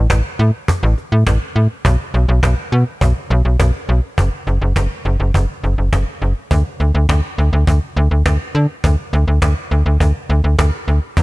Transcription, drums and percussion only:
0.10 cajon bass, cajon slap
0.39 cajon slap
0.68 cajon bass
0.98 cajon slap
1.27 cajon bass, cajon slap
1.85 cajon bass
2.14 cajon slap
2.43 cajon bass, cajon slap
3.01 cajon bass
3.31 cajon slap
3.60 cajon bass, cajon slap
4.18 cajon bass
4.47 cajon slap
4.76 cajon bass, cajon slap
5.05 cajon slap
5.34 cajon bass
5.64 cajon slap
5.93 cajon bass, cajon slap
6.22 cajon slap
6.51 cajon bass
6.80 cajon slap
7.09 cajon bass, cajon slap
7.38 cajon slap
7.67 cajon bass
7.97 cajon slap
8.26 cajon bass, cajon slap
8.55 cajon slap
8.84 cajon bass
9.13 cajon slap
9.42 cajon bass, cajon slap
9.71 cajon slap
10.00 cajon bass
10.30 cajon slap
10.59 cajon bass, cajon slap
10.88 cajon slap
11.17 cajon bass

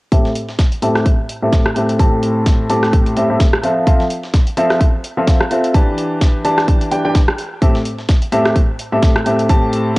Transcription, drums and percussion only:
0.12 kick, closed hi-hat
0.25 snare
0.35 closed hi-hat
0.49 snare
0.59 kick, snare, closed hi-hat
0.72 closed hi-hat
0.82 closed hi-hat
0.95 cross-stick, snare
1.06 kick, closed hi-hat
1.29 closed hi-hat
1.53 kick, snare, closed hi-hat
1.66 cross-stick
1.76 closed hi-hat
1.89 closed hi-hat
1.99 kick, closed hi-hat
2.23 closed hi-hat
2.46 kick, snare, closed hi-hat
2.70 closed hi-hat
2.83 cross-stick, snare
2.93 kick, closed hi-hat
3.06 closed hi-hat
3.17 closed hi-hat
3.40 kick, snare, closed hi-hat
3.53 cross-stick
3.63 closed hi-hat
3.87 kick, closed hi-hat
4.00 snare
4.10 closed hi-hat
4.24 snare
4.34 kick, snare, closed hi-hat
4.47 closed hi-hat
4.57 closed hi-hat
4.70 cross-stick, snare
4.81 kick, closed hi-hat
5.04 closed hi-hat
5.28 kick, snare, closed hi-hat
5.41 cross-stick
5.51 closed hi-hat
5.64 closed hi-hat
5.74 kick, closed hi-hat
5.98 closed hi-hat
6.21 kick, snare, closed hi-hat
6.45 closed hi-hat
6.58 cross-stick, snare
6.68 kick, closed hi-hat
6.81 closed hi-hat
6.92 closed hi-hat
7.15 kick, snare, closed hi-hat
7.28 cross-stick
7.38 closed hi-hat
7.62 kick, closed hi-hat
7.75 snare
7.85 closed hi-hat
7.98 snare
8.09 kick, snare, closed hi-hat
8.22 closed hi-hat
8.32 closed hi-hat
8.45 cross-stick, snare
8.56 kick, closed hi-hat
8.79 closed hi-hat
9.02 kick, snare, closed hi-hat
9.16 cross-stick
9.26 closed hi-hat
9.39 closed hi-hat
9.49 kick, closed hi-hat
9.73 closed hi-hat

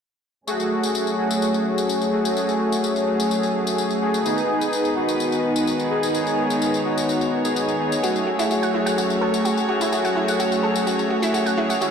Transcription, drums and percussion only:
0.48 tambourine
0.60 tambourine
0.83 tambourine
0.95 tambourine
1.07 tambourine
1.31 tambourine
1.42 tambourine
1.54 tambourine
1.78 tambourine
1.89 tambourine
2.02 tambourine
2.25 tambourine
2.37 tambourine
2.49 tambourine
2.72 tambourine
2.84 tambourine
2.96 tambourine
3.20 tambourine
3.31 tambourine
3.43 tambourine
3.67 tambourine
3.78 tambourine
3.90 tambourine
4.14 tambourine
4.26 tambourine
4.38 tambourine
4.61 tambourine
4.73 tambourine
4.85 tambourine
5.09 tambourine
5.20 tambourine
5.32 tambourine
5.56 tambourine
5.67 tambourine
5.79 tambourine
6.03 tambourine
6.15 tambourine
6.27 tambourine
6.50 tambourine
6.62 tambourine
6.74 tambourine
6.98 tambourine
7.09 tambourine
7.21 tambourine
7.45 tambourine
7.56 tambourine
7.68 tambourine
7.92 tambourine
8.04 tambourine
8.16 tambourine
8.39 tambourine
8.51 tambourine
8.63 tambourine
8.87 tambourine
8.98 tambourine
9.10 tambourine
9.34 tambourine
9.45 tambourine
9.57 tambourine
9.81 tambourine
9.93 tambourine
10.05 tambourine
10.28 tambourine
10.40 tambourine
10.52 tambourine
10.76 tambourine
10.87 tambourine
10.99 tambourine
11.23 tambourine
11.34 tambourine
11.46 tambourine
11.70 tambourine
11.82 tambourine

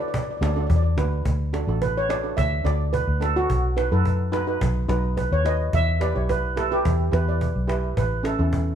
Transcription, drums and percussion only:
0.01 cajon slap
0.14 cajon bass
0.43 cajon slap
0.57 cajon slap
0.70 cajon bass
0.98 cajon slap
1.12 cajon slap
1.25 cajon bass
1.54 cajon slap
1.69 cajon slap
1.82 cajon bass
2.10 cajon slap
2.25 cajon slap
2.38 cajon bass
2.66 cajon slap
2.81 cajon slap
2.94 cajon bass
3.22 cajon slap
3.37 cajon slap
3.50 cajon bass
3.78 cajon slap
3.93 cajon slap
4.05 cajon bass
4.33 cajon slap
4.48 cajon slap
4.61 cajon bass
4.89 cajon slap
5.04 cajon slap
5.18 cajon bass
5.46 cajon slap
5.61 cajon slap
5.73 cajon bass
6.01 cajon slap
6.16 cajon slap
6.29 cajon bass
6.57 cajon slap
6.73 cajon slap
6.85 cajon bass
7.13 cajon slap
7.28 cajon slap
7.41 cajon bass
7.69 cajon slap
7.84 cajon slap
7.97 cajon bass
8.25 cajon slap
8.40 cajon slap
8.53 cajon bass

